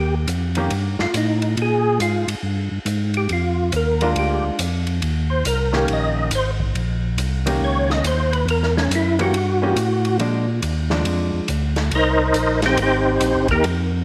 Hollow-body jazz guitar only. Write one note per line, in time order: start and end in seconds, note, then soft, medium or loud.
0.57 0.70 D#3 medium
0.57 0.71 A#3 medium
0.57 0.71 C#4 medium
0.57 0.71 G4 medium
4.02 4.57 G#3 medium
4.02 4.57 D4 medium
4.02 4.57 F4 medium
5.73 6.28 D#3 medium
5.73 6.29 A#3 medium
5.73 6.29 C#4 medium
5.73 6.29 G4 medium
7.46 8.01 D#3 medium
7.46 8.02 A#3 medium
7.46 8.02 C#4 medium
7.46 8.02 G4 medium
9.19 9.32 E3 medium
9.19 9.33 A#3 medium
9.19 9.33 C#4 medium
9.19 9.33 G4 medium
9.62 9.76 E3 medium
9.62 9.76 A#3 medium
9.62 9.76 C#4 medium
9.62 9.76 G4 medium
10.20 10.45 F3 medium
10.20 10.45 G#3 medium
10.20 10.45 D4 medium
10.91 11.46 F3 medium
10.91 11.47 G#3 medium
10.91 11.47 D4 medium